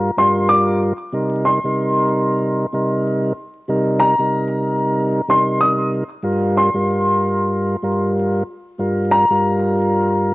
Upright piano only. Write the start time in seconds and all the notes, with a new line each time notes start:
Already playing: A#5
0.18 C6
0.49 D6
1.45 C6
4.00 A#5
5.30 C6
5.61 D#6
6.57 C6
9.11 A#5